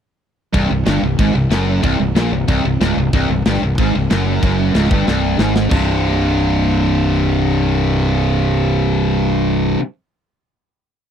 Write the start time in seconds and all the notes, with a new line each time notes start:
0.53 C1 C2, kick, crash
0.70 C1 C2
0.86 G1 G2, snare, crash
1.03 C1 C2
1.19 G#1 G#2, kick, crash
1.35 C1 C2
1.50 F#1 F#2, snare, crash
1.83 C1 C2, kick, crash
1.99 C1 C2
2.15 A#1 A#2, snare, crash
2.32 C1 C2
2.48 C1 C2, kick, crash
2.65 C1 C2
2.81 C#1 C#2, snare, crash
2.97 C1 C2
3.13 C1 C2, kick, crash
3.30 C1 C2
3.45 G1 G2, snare, crash
3.54 snare
3.62 C1 C2
3.78 G#1 G#2, kick, crash
3.95 C1 C2
4.10 F#1 F#2, snare, crash
4.43 F#1 F#2, kick, crash
4.75 C#1 C#2, snare, crash
4.84 snare
4.91 G1 G2, kick
5.08 C1 C2, snare
5.39 G#1 G#2, snare
5.56 snare
5.70 C1 C2 G2 C3, kick, floor tom, splash